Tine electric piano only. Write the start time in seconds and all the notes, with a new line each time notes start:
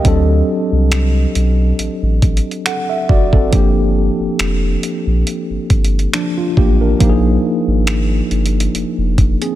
Already playing: G4 D#5
0.03 F#3 C4 D4
0.07 A4
2.66 A4 F#5
2.89 E5
3.09 F#4 D5
3.33 C4 A4
3.51 F3 A#3 D4
3.55 G4
6.14 F3 D4
6.38 F4
6.57 A#3 G4
6.81 D4 A#4
6.99 F3 A#3 D#4
7.03 G4
7.09 G#4
9.42 C4 G#4